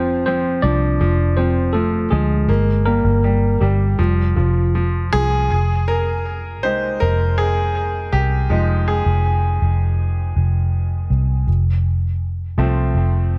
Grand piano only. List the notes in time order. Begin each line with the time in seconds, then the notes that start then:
Already playing: F3
0.26 F3
0.63 F3
1.01 F3
1.37 F3
1.74 F3
2.11 F3
2.49 A#3
2.86 G3
3.24 G3
3.61 G3
3.99 F3
4.36 F3
4.75 F3
5.13 F3 G#4
5.88 A#4
6.63 G#3 D#4 G4 C5
7.00 A#4
7.38 G#4
8.12 G4
8.50 F3 G#3 D#4
8.88 G#4
12.58 F3 A3 C4